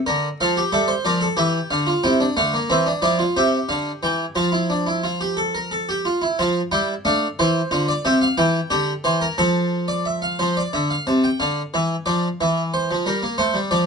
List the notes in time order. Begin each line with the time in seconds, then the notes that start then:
Already playing: E5
0.06 D3 A#4
0.41 F3 A4 F5
0.57 G4
0.72 G3 A4 E5
0.88 C5
1.05 F3 A#4 D5
1.21 A4
1.37 E3 G4 E5
1.70 D3 F5
1.87 F4
2.04 C3 E4 G5
2.20 D4
2.37 D3 A3 F5
2.54 A#3
2.70 E3 C4 E5
2.86 D4
3.02 F3 E4 D5
3.19 F4
3.37 C3 G4 E5
3.69 D3 F5
4.03 E3 G5
4.35 F3 F4 A5
4.52 E4
4.70 D4
4.87 E4
5.04 F4
5.21 G4
5.37 A4
5.55 A#4
5.71 A4
5.89 G4
6.05 F4
6.22 E4
6.39 F3 F4 A5
6.71 G3 E4 G5
7.05 A3 D4 F5
7.39 E3 E4 C5
7.71 D3 F4
7.88 D5
8.05 C3 G4 E5
8.22 F5
8.37 E3 E4 G5
8.70 D3 G4
9.04 E3 C5
9.21 A#4
9.38 F3 A4 A5
9.88 D5
10.05 E5
10.22 F5
10.39 F3 C5
10.57 D5
10.73 D3 E5
10.90 F5
11.07 C3 A5
11.24 G5
11.40 D3 F5
11.74 E3 E5
12.06 F3 D5
12.41 E3 E5
12.74 C5
12.91 F3
13.06 G3 A#4
13.23 A#3
13.38 A3 C5
13.54 G3
13.71 F3 D5